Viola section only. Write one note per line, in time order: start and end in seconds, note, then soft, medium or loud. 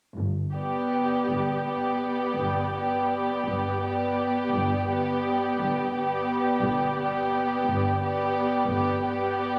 0.55 1.65 B3 soft
1.67 2.73 B3 soft
2.74 3.80 B3 soft
3.83 4.87 B3 soft
4.89 5.93 B3 soft
5.95 6.96 B3 soft
6.98 8.00 B3 soft
8.01 8.68 B3 soft
8.69 9.01 B3 soft
9.02 9.59 B3 soft